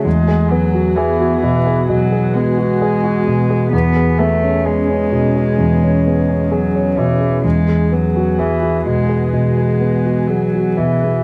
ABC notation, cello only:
X:1
M:4/4
L:1/8
Q:1/4=65
K:E
V:1 name="Cello" clef=bass
G, F, E, E, F, G,3 | B, A, G,4 F, E, | G, F, E, G, G,2 F, E, |]